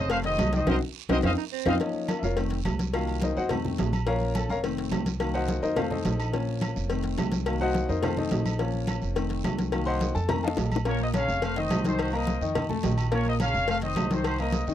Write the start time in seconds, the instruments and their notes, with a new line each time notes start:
Already playing: upright bass F1, trumpet section D#5
0.00 trumpet section C5
0.10 upright piano A3 A4 A5, trumpet section C5 F5, cowbell, high conga, low agogo, long guiro
0.24 upright piano D#3 D#4 D#5, trumpet section C5 D#5, cowbell, high conga
0.38 upright bass C2, cowbell, high conga, low timbale, low agogo, short guiro, claves
0.53 upright piano D#3 D#4 D#5, trumpet section C5 D#5, cowbell, high conga, short guiro
0.67 upright bass C2, upright piano C4 D#4 F#4, trumpet section A#4 C5 D#5, cowbell, high conga, high timbale, long guiro, claves
1.09 upright bass C2, upright piano C4 D#4 F#4, trumpet section A#4 C5 D#5, cowbell, high conga, high timbale, long guiro, claves
1.23 upright bass F2, upright piano C4 D#4 F4, trumpet section C5 D#5 F5, cowbell, high conga, high timbale, long guiro, claves
1.37 baritone saxophone D#4
1.52 baritone saxophone C4
1.66 upright bass F2, upright piano C4 D#4 F4, trumpet section C5 D#5 F5, cowbell, high conga, high timbale, claves
1.80 upright piano F3 A#3 C#4 D#4 D#5, cowbell, high conga, low agogo, long guiro
1.94 high conga
2.08 upright piano C#4 F4 A#4 C#5, cowbell, high conga, low timbale, low agogo, short guiro, claves
2.19 upright bass F1, upright piano E5, high conga, short guiro
2.24 upright piano F4 A#4 C#5 F5
2.37 upright piano D#3 A3 C4, cowbell, high conga, low agogo, long guiro
2.51 cowbell, high conga
2.65 upright bass C2, cowbell, high conga, low timbale, low agogo, short guiro, claves
2.79 cowbell, high conga, short guiro
2.93 upright piano D#3 F#3 A#3 F4 F5, cowbell, high conga, low agogo, long guiro, claves
3.08 high conga, low agogo
3.21 upright piano D#4 A#4 C5 D#5, cowbell, high conga, low timbale, short guiro
3.36 upright bass F2, upright piano F#4 C5 D#5 F#5, high conga, short guiro
3.49 upright piano D#3 A3 C4, cowbell, high conga, low conga, low agogo, long guiro, claves
3.65 high conga, low conga
3.78 upright bass A#1, cowbell, high conga, low timbale, low agogo, short guiro
3.93 high conga, low agogo, short guiro, claves
4.07 upright piano F3 A#3 C#4 A#4 C#5 F5 A#5, cowbell, low agogo, long guiro
4.21 high conga
4.35 upright piano A4 A5, cowbell, high conga, low timbale, low agogo, short guiro, claves
4.49 upright bass F1, upright piano A#4 C#5 F5 A#5, high conga, short guiro
4.63 upright piano D#3 A3 C4, cowbell, high conga, low agogo, long guiro
4.77 cowbell, high conga
4.91 upright bass C2, cowbell, high conga, low timbale, low agogo, short guiro, claves
5.06 cowbell, high conga, short guiro
5.20 upright piano D#3 F#3 A#3, cowbell, high conga, low agogo, long guiro, claves
5.34 upright piano F#4 C5 D#5 F#5, high conga, low agogo
5.48 cowbell, high conga, low timbale, short guiro
5.62 upright bass F2, upright piano D#4 A#4 C5 D#5, high conga, short guiro
5.76 upright piano D#3 A3 C4 F4 A4 C5 F5, cowbell, high conga, low conga, low agogo, long guiro, claves
5.91 upright piano D#4 A4 C5 D#5, high conga, low conga
6.05 upright bass A#1, cowbell, high conga, low timbale, low agogo, short guiro
6.19 low agogo, short guiro, claves
6.33 upright piano F3 A#3 C#4, cowbell, high conga, low agogo, long guiro
6.47 high conga
6.61 cowbell, high conga, low timbale, low agogo, short guiro, claves
6.76 upright bass F1, high conga, short guiro
6.90 upright piano D#3 A3 C4, cowbell, high conga, low agogo, long guiro
7.04 cowbell, high conga
7.18 upright bass C2, cowbell, high conga, low timbale, low agogo, short guiro, claves
7.32 cowbell, high conga, short guiro
7.46 upright piano D#3 F#3 A#3, cowbell, high conga, low agogo, long guiro, claves
7.61 upright piano F#4 C5 D#5 F#5, high conga, low agogo
7.74 cowbell, high conga, low timbale, short guiro
7.89 upright bass F2, upright piano D#4 A#4 C5 D#5, high conga, short guiro
8.02 upright piano D#3 A3 C4 F4 A4 C5 F5, cowbell, high conga, low conga, low agogo, long guiro, claves
8.17 upright piano D#4 A4 C5 D#5, high conga, low conga
8.31 upright bass A#1, cowbell, high conga, low timbale, low agogo, short guiro
8.45 high conga, low agogo, short guiro, claves
8.59 upright piano F3 A#3 C#4, cowbell, low agogo, long guiro
8.74 high conga
8.87 cowbell, high conga, low timbale, low agogo, short guiro, claves
9.02 upright bass F1, high conga, short guiro
9.16 upright piano D#3 A3 C4, cowbell, high conga, low agogo, long guiro
9.30 cowbell, high conga
9.44 upright bass C2, cowbell, high conga, low timbale, low agogo, short guiro, claves
9.58 cowbell, high conga, short guiro
9.72 upright piano D#3 F#3 A#3, cowbell, high conga, low agogo, long guiro, claves
9.86 upright piano C5 D#5 F#5 C6, high conga, low agogo
10.01 cowbell, high conga, low timbale, short guiro
10.15 upright bass F2, upright piano A4 A5, high conga, short guiro
10.29 upright piano D#3 A3 C4 A#4 A#5, cowbell, high bongo, high conga, low conga, low agogo, long guiro, claves
10.43 upright piano A4 D#5 F5 A5, high conga
10.48 low bongo
10.57 upright bass A#1, cowbell, low bongo, high conga, low timbale, low agogo, short guiro
10.71 high conga, low agogo, short guiro, claves
10.76 low bongo
10.85 upright piano A#2 A#3 A#4, trumpet section A#4 C#5, cowbell, high conga, low agogo, long guiro
11.00 trumpet section C5 D#5, high conga
11.14 upright piano C#3 C#4 C#5, trumpet section C#5 F5, cowbell, high conga, low timbale, low agogo, short guiro, claves
11.28 upright bass F1, high conga, short guiro
11.42 upright piano A3 A4 A5, trumpet section C5 F5, cowbell, high conga, low agogo, long guiro
11.56 upright piano D#3 D#4 D#5, trumpet section C5 D#5, cowbell, high conga
11.71 upright bass C2, cowbell, high conga, low timbale, low agogo, short guiro, claves
11.85 upright piano D#3 D#4 D#5, trumpet section A4 C5, cowbell, high conga, short guiro
11.99 trumpet section F#4 C5, cowbell, high conga, low agogo, long guiro, claves
12.13 upright piano A#3 A#4 A#5, trumpet section C5 D#5, high conga, low agogo
12.27 cowbell, high conga, low timbale, short guiro
12.41 upright bass F2, upright piano D#3 D#4 D#5, high conga, short guiro
12.55 cowbell, high conga, low conga, low agogo, long guiro, claves
12.69 upright piano A3 A4 A5, high conga, low conga
12.83 upright bass A#1, upright piano D#3 D#4 D#5, cowbell, high conga, low timbale, low agogo, short guiro
12.98 low agogo, short guiro, claves
13.11 upright piano A#2 A#3 A#4, trumpet section A#4 C#5, cowbell, high conga, low agogo, long guiro
13.25 trumpet section C5 D#5, high conga
13.40 upright piano C#3 C#4 C#5, trumpet section C#5 F5, cowbell, high conga, low timbale, low agogo, short guiro, claves
13.54 upright bass F1, high conga, short guiro
13.68 upright piano A3 A4 A5, trumpet section C5 F5, cowbell, high conga, low agogo, long guiro
13.82 upright piano D#3 D#4 D#5, trumpet section C5 D#5, cowbell, high conga
13.96 upright bass C2, cowbell, high conga, low timbale, low agogo, short guiro, claves
14.11 upright piano D#3 D#4 D#5, trumpet section A4 C5, cowbell, high conga, short guiro
14.24 trumpet section F#4 C5, cowbell, high conga, low agogo, long guiro, claves
14.38 upright piano A#3 A#4 A#5, trumpet section C5 D#5, high conga, low agogo
14.52 cowbell, high conga, low timbale, short guiro
14.67 upright bass F2, upright piano D#3 D#4 D#5, high conga, short guiro